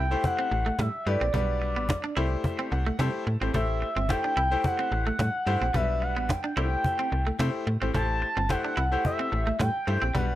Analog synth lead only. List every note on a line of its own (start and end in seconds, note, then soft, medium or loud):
0.00 0.26 G5 loud
0.25 0.82 F#5 loud
0.80 1.09 E5 medium
1.07 2.72 D5 loud
3.55 4.12 E5 loud
4.10 4.67 G5 loud
4.65 5.77 F#5 loud
5.76 6.04 E5 loud
6.03 6.24 F#5 loud
6.24 6.32 F#5 medium
6.31 7.68 G5 loud
7.95 8.52 A5 loud
8.51 9.05 F#5 loud
9.06 9.57 E5 loud
9.61 10.18 G5 medium
10.16 10.35 F#5 loud